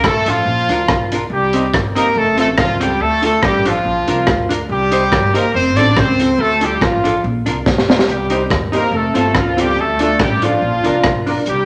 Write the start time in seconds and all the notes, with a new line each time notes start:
0.04 A#1 A3 A4, muted hollow-body jazz guitar stroke, kick, cross-stick
0.26 A1 F3 D4 F4 A4, closed hi-hat
0.46 A#1
0.69 D2 D4 F4 A#4, closed hi-hat
0.88 B1, kick, cross-stick
1.12 D4 F4 A#4, closed hi-hat
1.30 C2 G3 G4
1.53 C4 D#4 G4, closed hi-hat
1.73 G1, muted hollow-body jazz guitar stroke, kick, cross-stick
1.95 A#3 C4 D#4 G4 A#4, closed hi-hat
2.15 F1 A3 A4, muted hollow-body jazz guitar stroke
2.37 A1 A3 C4 F4 A4, closed hi-hat
2.57 C#2 F3 F4, muted hollow-body jazz guitar stroke, kick, cross-stick
2.80 G3 C4 F4 G4 A4, closed hi-hat
3.00 D2 A3 A4
3.22 A3 D4 F4 A4, closed hi-hat
3.43 A1 G3 G4, kick, cross-stick
3.65 F3 D4 F4 A4, closed hi-hat
3.85 A#1
4.07 C2 D4 F4 A#4, closed hi-hat
4.27 D2, kick, cross-stick
4.49 D4 F4 A#4, closed hi-hat
4.69 C2 G3 G4
4.91 D#4 G4 C5, closed hi-hat
5.11 G1, muted hollow-body jazz guitar stroke, kick, cross-stick
5.34 A#3 D#4 G4 A#4 C5, closed hi-hat
5.54 F1 C4 C5, muted hollow-body jazz guitar stroke
5.76 A1 C4 D4 F4 A4 D5, closed hi-hat
5.96 C#2 C4 C5, muted hollow-body jazz guitar stroke, kick, cross-stick
6.19 C4 F4 A4, closed hi-hat
6.38 D2 A3 A4
6.61 G3 D4 F4 G4 A4, closed hi-hat
6.81 A1 F3 F4, muted hollow-body jazz guitar stroke, kick, cross-stick
7.04 D4 F4 A4, closed hi-hat
7.24 A#1
7.46 C2 D4 F4 A#4, closed hi-hat
7.66 B1, kick, snare
7.78 snare
7.89 D4 F4 A#4, snare
7.99 snare
8.07 C2 G3 G4, hi-hat pedal
8.30 C4 D#4 G4 C5, closed hi-hat
8.49 D#2, muted hollow-body jazz guitar stroke, kick, cross-stick
8.72 A#3 C4 D#4 G4 A#4 C5, closed hi-hat
8.91 F1 A3 A4 C5, muted hollow-body jazz guitar stroke
9.14 G1 A3 C4 F4 A4 C5, closed hi-hat
9.33 C#2 F3 F4, muted hollow-body jazz guitar stroke, kick, cross-stick
9.57 G3 C4 F4 G4 A4 C5, closed hi-hat
9.76 D2 A3 A4
9.99 A3 D4 F4 A4 D5, closed hi-hat
10.19 A1 G3 G4, muted hollow-body jazz guitar stroke, kick, cross-stick
10.42 F3 D4 F4 A4 D5, closed hi-hat
10.62 A#1 A#4 D5
10.84 C2 D4 F4 A#4 D5, closed hi-hat
11.04 B1, kick, cross-stick
11.26 D4 F4 A#4 D5, open hi-hat
11.45 C2 G3 G4, hi-hat pedal